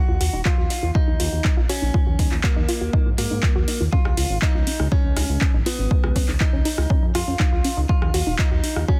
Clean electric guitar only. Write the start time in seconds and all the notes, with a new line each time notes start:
Already playing: F#4
0.46 F4
0.95 D#4
1.69 C#4
2.44 A#3
3.18 A#3
3.93 F4
4.42 D#4
4.92 C#4
5.66 B3
6.41 D#4
7.15 F4
7.89 F4
8.39 D#4
8.88 C#4